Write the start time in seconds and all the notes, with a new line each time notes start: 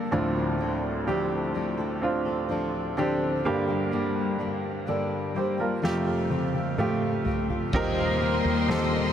Already playing: G3 A#3 D4 G4 A4 A#4
0.11 D2 A2 D3 F3 C4 D4 F4 A4
0.59 F3 C4 D4 A4
1.06 D3 F3 C4 D4 G4 A4
1.54 F3 C4 D4 A4
1.77 C4 D4 A4
2.02 C4 D4 F4
2.25 C4 D4 A4
2.49 F3 C4 D4 A4
2.97 D3 F3 C4 D4 G4 A4
3.44 G2 D3 G3 A#3 D4 G4
3.67 G3 A#3 D4 G4
3.91 G2 D3 G3 A#3 D4 G4
4.39 G3 A#3 D4 G4
4.86 G2 D3 G3 A#3 D4 G4 A4 D5
5.34 G3 A#3 D4 G4 C5
5.58 G3 A#3 D4 F4 G4 A#4
5.82 F2 C3 F3 A3 C4 F4 G4, snare
6.05 C4 F4 G4
6.30 A3 C4 F4 G4, high tom
6.53 C4 F4 G4, high tom
6.78 F3 A3 C4 F4 G4, mid tom
7.25 A3 C4 F4 G4, floor tom
7.48 C4 F4 G4, floor tom
7.73 D#2 A#2 D#3 G3 A#3 C4 D#4 G4 A#4 C5 D#5 G5 C6, kick, crash
8.20 G3 A#3 G4 C5, ride
8.44 D#2
8.68 D#3 G3 A#3 C4 D#4 G4 A4 C5, snare, ride